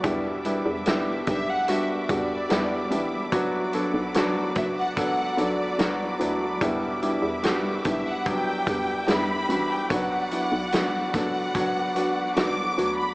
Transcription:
<<
  \new Staff \with { instrumentName = "Violin section" } { \time 4/4 \key b \minor \tempo 4 = 73 r4. e''16 fis''16 e''8 d''4 r8 | r4. e''16 fis''16 fis''8 d''4 r8 | r4. e''16 fis''16 g''4 b''8. g''16 | fis''4. fis''4. d'''8. b''16 | }
  \new Staff \with { instrumentName = "String section" } { \time 4/4 \key b \minor << { <b'' d'''>1~ | <b'' d'''>1~ | <b'' d'''>1~ | <b'' d'''>1 | } \\ { <g e''>1 | <fis' d''>1 | <e' e''>1 | <fis' d''>1 | } >> }
  \new Staff \with { instrumentName = "Felt piano" } { \time 4/4 \key b \minor << { <g b d' e'>8 <g b d' e'>8 <g b d' e'>8 <g b d' g'>8 <g b d' fis'>8 <g b d' fis'>8 <g b d' e'>8 <g b d' e'>8 | <fis b d' fis'>8 <fis b d' a'>8 <fis b d' fis'>8 <fis b d' fis'>8 <fis b d' a'>8 <fis b d' a'>8 <fis b d' fis'>8 <fis b d' e'>8 | <g b d' e'>8 <g b d' e'>8 <g b d' fis'>8 <g b d' e'>8 <fis g b d'>8 <g b d' g'>8 <g b d' e'>8 <g b d' fis'>8 | <fis b d' fis'>8 <fis b d' e'>8 <fis b d' fis'>8 <fis b d' a'>8 <fis b d' fis'>8 <fis b d' fis'>8 <fis b d' fis'>8 <fis b d' fis'>8 | } \\ { b,4. r2 r8 | r1 | b,4. r2 r8 | r1 | } >> }
  \new Staff \with { instrumentName = "FM bass" } { \clef bass \time 4/4 \key b \minor e,8. e,8. b,,4 e,8 e,8 a,,8 | b,,8. b,,8. fis,,4 b,,8 b,,8 d,8 | e,8. e,8. b,,4 e,8 e,8 a,,8 | b,,8. b,,8. fis,,4 b,,8 b,,8 d,8 | }
  \new DrumStaff \with { instrumentName = "Drums" } \drummode { \time 4/4 <hh bd>8 hh8 <hh sn>8 <hh bd sn>8 hh8 <hh bd>8 <hh sn>8 hh8 | <hh bd>8 hh8 <hh sn>8 <hh bd sn>8 <hh bd>8 hh8 <hh sn>8 hh8 | <hh bd>8 hh8 <hh sn>8 <hh bd>8 <hh bd>8 <hh bd>8 <hh sn>8 hh8 | <hh bd>8 hh8 <hh sn>8 <hh bd sn>8 <hh bd>8 hh8 <hh sn>8 hh8 | }
>>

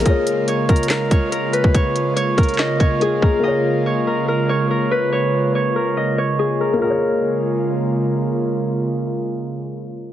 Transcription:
<<
  \new Staff \with { instrumentName = "Harp" } { \time 4/4 \key bes \phrygian \tempo 4 = 142 ees''4 des''8 bes'8 bes'8 des''8 bes'8 ces''8 | des''4 des''8 bes'8 ees''8 des''8 aes'8 bes'8 | ees''4 des''8 bes'8 bes'8 des''8 bes'8 ces''8 | des''4 des''8 bes'8 ees''8 des''8 aes'8 bes'8 |
bes'2. r4 | r1 | }
  \new Staff \with { instrumentName = "Grand piano" } { \time 4/4 \key bes \phrygian <bes f' aes' des''>1~ | <bes f' aes' des''>2. <bes f' aes' bes'>4 | <bes f' aes' des''>1~ | <bes f' aes' des''>1 |
<bes f' aes' des''>1~ | <bes f' aes' des''>1 | }
  \new Staff \with { instrumentName = "Analog synth pad" } { \clef bass \time 4/4 \key bes \phrygian << { <des bes f'>1~ | <des bes f'>1~ | <des bes f'>1~ | <des bes f'>1 |
<des aes bes f'>1~ | <des aes bes f'>1 | } \\ { aes1~ | aes1 | aes1~ | aes1 |
r1 | r1 | } >> }
  \new DrumStaff \with { instrumentName = "Drums" } \drummode { \time 4/4 <hh bd>8 hh8 \tuplet 3/2 { hh16 r16 r16 <hh bd>16 hh16 hh16 } <hc hh sn>8 <hh bd>8 hh8 hh16 bd16 | <hh bd>8 hh8 hh8 <hh bd>32 hh32 hh32 hh32 <hc hh sn>8 <hh bd>8 hh8 bd8 | r4 r4 r4 r4 | r4 r4 r4 r4 |
r4 r4 r4 r4 | r4 r4 r4 r4 | }
>>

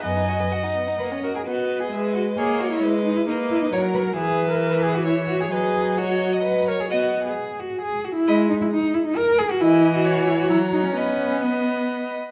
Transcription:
<<
  \new Staff \with { instrumentName = "Violin" } { \time 3/4 \key b \major \tempo 4 = 132 gis''4 fis''4. r8 | dis''4 e''8 dis''4.~ | dis''4 dis''4 fis''4 | e''2 e''4 |
dis''4 dis''4 fis''8 r8 | fis''8 r2 r8 | b''8 r2 r8 | gis''4 gis''4 ais''4 |
b''4 b''4. r8 | }
  \new Staff \with { instrumentName = "Violin" } { \time 3/4 \key b \major b16 dis'16 fis'16 b'16 fis'16 dis'16 b16 dis'16 ais16 cis'16 fis'16 ais'16 | b'4 b'4 cis''4 | b'4 b'4 ais'4 | b'2 cis''4 |
b'4 cis''8. dis''8. cis''8 | dis''8 r2 r8 | dis''8 r2 r8 | dis''4 cis''4 cis''4 |
dis''4 dis''4. r8 | }
  \new Staff \with { instrumentName = "Cello" } { \time 3/4 \key b \major fis,4 r4 b'8 ais'16 gis'16 | fis'8. gis'8. fis'8 gis'8 fis'16 e'16~ | e'8 dis'16 e'16 dis'8 e'16 dis'16 cis''8 b'16 ais'16 | gis'8. ais'8. gis'16 fis'16 e'8 fis'16 gis'16 |
gis'4 fis'4 b'8 ais'16 gis'16 | fis'8. gis'8. fis'8 gis'8 fis'16 e'16~ | e'8 dis'16 e'16 dis'8 e'16 dis'16 ais'8 gis'16 fis'16 | e'8. fis'8. e'16 fis'16 e'8 dis'16 cis'16 |
cis'4 b4 r4 | }
  \new Staff \with { instrumentName = "Viola" } { \clef bass \time 3/4 \key b \major dis''2~ dis''8 r8 | b4 gis4 ais4 | gis4 ais4 fis4 | e2. |
fis2~ fis8 r8 | b4 r2 | gis4 r2 | e2 fis4 |
b2~ b8 r8 | }
>>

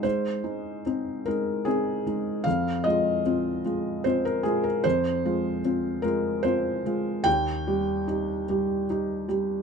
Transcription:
\new Staff \with { instrumentName = "Felt piano" } { \time 3/4 \key f \minor \tempo 4 = 75 << { c''4. bes'8 aes'4 | f''8 ees''4. c''16 bes'16 aes'16 bes'16 | c''4. bes'8 c''4 | g''2. | } \\ { aes,8 <aes ees'>8 <c' ees'>8 <aes ees'>8 <c' ees'>8 <aes ees'>8 | f,8 <aes f'>8 <c' f'>8 <aes f'>8 <c' f'>8 <aes f'>8 | f,8 <aes f'>8 <c' f'>8 <aes f'>8 <c' f'>8 <aes f'>8 | ees,8 <g g'>8 <ees' g'>8 <g g'>8 <ees' g'>8 <g g'>8 | } >> }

